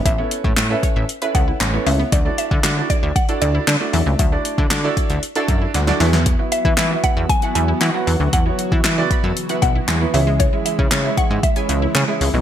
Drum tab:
HH |x-x-x-x-xxx-x-o-|x-x-x-x-xxx-x-o-|x-x-x-xxxxx-x-o-|x-x-x-x-xxx-x-o-|
CP |----x-------x---|----x-------x---|----x-----------|----x-------x---|
SD |----o-------o---|----o-------o---|----o-------oooo|----o-------o---|
BD |o--o--o---o-----|o--o--o-o-------|o--o--o---o-----|o--o--o-o-------|

HH |x-x-x-x-xxx-x-o-|x-x-x-x-xxx-x-o-|
CP |----x-------x---|----x-------x---|
SD |----o-------o---|----o-------o---|
BD |o--o--o---o-----|o--o--o-o-------|